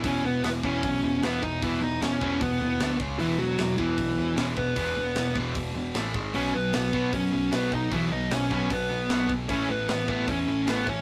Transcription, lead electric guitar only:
\new Staff \with { instrumentName = "Lead electric guitar" } { \time 4/4 \key e \major \tempo 4 = 152 <cis' cis''>8 <b b'>8 <b b'>8 <cis' cis''>4. <b b'>8 <dis' dis''>8 | <e e'>8 <dis' dis''>8 <cis' cis''>4 <b b'>4. r8 | <e e'>8 <fis fis'>4 <e e'>4. <cis' cis''>8 <b b'>8~ | <b b'>4. r2 r8 |
<cis' cis''>8 <b b'>8 <b b'>4 <cis' cis''>4 <b b'>8 <dis' dis''>8 | <e e'>8 <dis' dis''>8 <cis' cis''>8 <cis' cis''>8 <b b'>4. r8 | <cis' cis''>8 <b b'>8 <b b'>8 <b b'>8 <cis' cis''>4 <b b'>8 <cis' cis''>8 | }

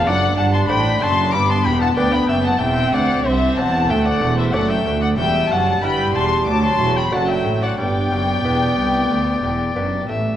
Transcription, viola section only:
\new Staff \with { instrumentName = "Viola section" } { \time 4/4 \key g \major \tempo 4 = 93 d'2 b4 b4 | c'4 c'4 a4 a4 | g4 g4 fis4 fis4 | b2.~ b8 r8 | }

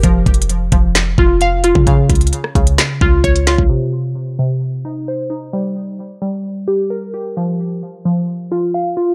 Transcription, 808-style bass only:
\new Staff \with { instrumentName = "808-style bass" } { \clef bass \time 4/4 \key c \minor \tempo 4 = 131 f,,8 f,,4 f,,4 f,,4~ f,,16 des16~ | des8 des,8 r8 des,8 r8 des,8 des,8. des,16 | r1 | r1 |
r1 | }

